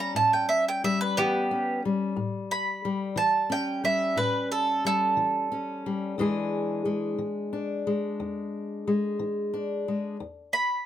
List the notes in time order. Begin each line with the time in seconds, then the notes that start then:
Already playing: G3 C#4 G4
0.00 A#5
0.15 A2 A5
0.33 G5
0.49 E5
0.68 G5
0.84 G3 E5
1.01 B4
1.17 E3 B3 G4
1.51 C#4
1.85 G3
2.16 A2
2.51 B5
2.85 G3
3.16 E3 A5
3.50 C#4 G5
3.84 G3 E5
4.16 A2 B4
4.52 A4
4.85 G3 A4
5.17 E3
5.52 C#4
5.86 G3
6.18 E2 E3 G#3 D4 G#4
6.85 G#3
7.18 E3
7.53 D4
7.87 G#3
8.20 E2
8.88 G#3
9.19 E3
9.54 D4
9.88 G#3
10.20 E2
10.53 B5